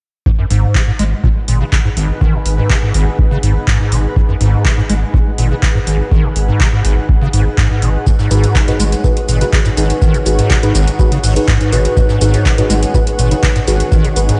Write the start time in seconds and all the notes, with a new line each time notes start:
0.26 G#2 D#4, kick
0.39 F#2
0.46 B4 F#5
0.51 G#1 G#2, open hi-hat
0.60 G#4
0.75 C#3, kick, clap
0.87 G#2
0.99 G#1 G#3, open hi-hat
1.24 A#2, kick
1.48 G#1 A#2, open hi-hat
1.61 C#3
1.72 C#3, kick, clap
1.85 G#2
1.97 G#1, open hi-hat
2.21 D#3, kick
2.34 A#2
2.46 G#1, open hi-hat
2.58 G#2
2.70 C#3, kick, clap
2.83 G#2
2.94 G#1, open hi-hat
3.19 kick
3.31 C#3
3.43 G#1 G#2, open hi-hat
3.67 G#2, kick, clap
3.80 G#2
3.92 G#1 B2, open hi-hat
4.16 G#2, kick
4.29 F#2
4.41 G#1 G#2, open hi-hat
4.65 C#3, kick, clap
4.78 G#2
4.90 G#1 G#3, open hi-hat
5.14 A#2, kick
5.38 G#1 A#2, open hi-hat
5.51 C#3
5.63 C#3, kick, clap
5.75 G#2
5.87 G#1, open hi-hat
6.11 D#3, kick
6.24 A#2
6.36 G#1, open hi-hat
6.48 G#2
6.60 C#3, kick, clap
6.73 G#2
6.85 G#1, open hi-hat
7.09 kick
7.22 C#3
7.26 C#5
7.33 G#1 G#2, open hi-hat
7.58 G#2, kick, clap
7.70 G#2
7.82 G#1 B2, open hi-hat
8.07 G#2, kick, closed hi-hat, shaker
8.19 G#2, snare, shaker
8.30 G#1 G#2 D#4 F#4 G#4 B4, closed hi-hat, open hi-hat, shaker
8.43 closed hi-hat, shaker
8.55 C#3, kick, snare, clap, closed hi-hat, shaker
8.68 G#2 D#4 F#4 G#4 B4, snare, closed hi-hat, shaker
8.79 G#1 G#3, closed hi-hat, open hi-hat, shaker
8.92 closed hi-hat, shaker
9.04 A#2 D#4 F#4 G#4 B4, kick, closed hi-hat, shaker
9.17 closed hi-hat, shaker
9.29 G#1 A#2, closed hi-hat, open hi-hat, shaker
9.41 C#3 D#4 F#4 G#4 B4, closed hi-hat, shaker
9.53 C#3, kick, snare, clap, closed hi-hat, shaker
9.65 G#2, snare, closed hi-hat, shaker
9.77 G#1 D#4 F#4 G#4 B4, closed hi-hat, open hi-hat, shaker
9.90 closed hi-hat, shaker
10.02 D#3, kick, closed hi-hat, shaker
10.14 A#2, closed hi-hat, shaker
10.25 G#1 D#4 F#4 G#4 B4, closed hi-hat, open hi-hat, shaker
10.39 G#2, closed hi-hat, shaker
10.49 C#3, kick, snare, clap, closed hi-hat, shaker
10.63 G#2 D#4 F#4 G#4 B4, closed hi-hat, shaker
10.75 G#1, closed hi-hat, open hi-hat, shaker
10.88 closed hi-hat, shaker
10.99 D#4 F#4 G#4 B4, kick, closed hi-hat, shaker
11.12 C#3, closed hi-hat, shaker
11.23 G#1 G#2, open hi-hat, shaker
11.36 D#4 F#4 G#4 B4, closed hi-hat, shaker
11.47 G#2, kick, snare, clap, closed hi-hat, shaker
11.61 G#2, closed hi-hat, shaker
11.72 G#1 B2 D#4 F#4 G#4 B4, closed hi-hat, open hi-hat, shaker
11.85 closed hi-hat, shaker
11.97 G#2, kick, closed hi-hat, shaker
12.09 G#2, snare, shaker
12.21 G#1 G#2 D#4 F#4 G#4 B4, closed hi-hat, open hi-hat, shaker
12.33 closed hi-hat, shaker
12.45 C#3, kick, snare, clap, closed hi-hat, shaker
12.58 G#2 D#4 F#4 G#4 B4, snare, closed hi-hat, shaker
12.70 G#1 G#3, closed hi-hat, open hi-hat, shaker
12.83 closed hi-hat, shaker
12.94 A#2 D#4 F#4 G#4 B4, kick, closed hi-hat, shaker
13.07 closed hi-hat, shaker
13.19 G#1 A#2, closed hi-hat, open hi-hat, shaker
13.31 C#3 D#4 F#4 G#4 B4, closed hi-hat, shaker
13.43 C#3, kick, snare, clap, closed hi-hat, shaker
13.56 G#2, snare, closed hi-hat, shaker
13.68 G#1 D#4 F#4 G#4 B4, closed hi-hat, open hi-hat, shaker
13.80 closed hi-hat, shaker
13.92 D#3, kick, closed hi-hat, shaker
14.04 A#2, closed hi-hat, shaker
14.16 G#1 D#4 F#4 G#4 B4, closed hi-hat, open hi-hat, shaker
14.29 G#2, closed hi-hat, shaker